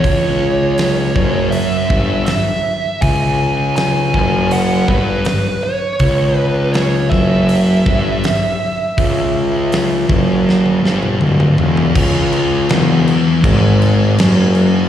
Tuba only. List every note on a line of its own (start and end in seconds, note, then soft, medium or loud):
0.04 1.12 C#2 loud
1.16 1.61 F#1 loud
1.90 2.25 G1 loud
3.02 4.10 C#2 medium
4.14 4.85 F#1 loud
4.88 5.23 G1 medium
6.00 7.08 C#2 loud
7.12 7.82 F#1 loud
7.86 8.21 G1 medium
8.98 10.06 C#2 loud
10.09 10.80 F#1 loud
10.83 11.18 G1 medium
11.20 11.55 D1 medium
11.58 11.93 E1 medium
11.95 12.66 C#2 loud
12.70 13.14 E1 medium
13.44 14.15 G#1 loud
14.18 14.89 F#1 medium